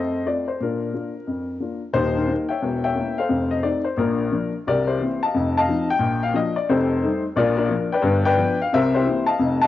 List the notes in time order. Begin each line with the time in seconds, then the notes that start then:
Already playing: F2 A3 A4 C5 D#5
0.26 A3 C4 F4 D5
0.48 C5
0.60 A#2 D4 F4 A#4
0.94 A#3 D4 F4
1.27 F2
1.60 A#3 D4 F4
1.93 D#1 D#2 D#4 G4 C5
2.17 D#4 G4 A#4
2.28 A#3 D#4 G4
2.49 C#5 E5 G5
2.62 E1 E2
2.84 C#5 E5 G5
2.95 A#3 C#4 E4
3.18 A4 C5 F5
3.29 F1 F2
3.51 D#5
3.63 A3 C4 D#4 D5
3.84 C5
3.97 A#1 A#2 D4 F4 A#4
4.32 F3 A#3 D4
4.67 C2 C3 G4 A#4 D5
4.87 E4 G4 C5
5.00 E3 A#3 C4
5.23 D#5 F5 A5
5.34 F1 F2
5.57 D#5 F5 A5
5.68 F3 C4 D#4
5.90 G5
5.99 A#1 A#2
6.23 F5
6.34 F3 A#3 D4 D#5
6.56 D5
6.69 F1 F2 G4 A4 C5
7.03 G3 A3 D#4
7.36 A#1 A#2 F4 A#4 D5
7.57 D4 F4 A#4
7.69 F3 A#3 D4
7.92 B4 D5 G5
8.02 G1 G2
8.25 B4 D5 G5
8.37 F3 B3 D4
8.62 F5
8.73 C2 C3 A#4 C5 E5
8.95 E4 G4 C5
9.07 E3 A#3 C4
9.27 D#5 F5 A5
9.39 F1 F2
9.62 D#5 F5 A5